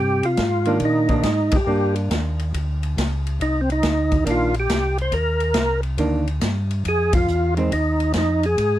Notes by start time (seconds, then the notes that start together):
Already playing: G2 C3 G4
0.23 F4, ride
0.37 G#2, kick, snare, hi-hat pedal, ride
0.65 D#3 A#3 D4, ride
0.80 A#2, kick, ride
0.85 D#4
1.09 D#3 A#3 D4, kick, ride
1.23 G#2, kick, snare, hi-hat pedal, ride
1.51 G#2, kick, ride
1.56 G4
1.67 G2 A#3 D4
1.96 ride
2.11 D#2, kick, snare, hi-hat pedal, ride
2.39 ride
2.54 D2, kick, ride
2.83 ride
2.97 C#2, kick, snare, hi-hat pedal, ride
3.27 ride
3.40 C2 D#4, kick, ride
3.61 C4
3.70 D#4, ride
3.83 D2, kick, snare, hi-hat pedal, ride
4.11 kick, ride
4.25 A#1 D#3 A#3 D4, kick, ride
4.31 F4
4.54 ride
4.60 G4
4.69 C2, kick, snare, hi-hat pedal, ride
4.98 C5, ride
5.12 D#2 A#4, kick, ride
5.40 ride
5.54 C2, kick, snare, hi-hat pedal, ride
5.83 ride
5.98 D2 D#3 A#3 D4, kick, ride
6.27 ride
6.41 G2, kick, snare, hi-hat pedal, ride
6.71 ride
6.85 F2 G#4, kick, ride
7.13 F4, kick, ride
7.28 E2, hi-hat pedal
7.57 D#3 G#3 C4, ride
7.72 D#2 D#4, kick, ride
8.00 ride
8.13 F2, kick, snare, hi-hat pedal, ride
8.18 D#4
8.43 G#4, ride
8.58 G#2, kick, ride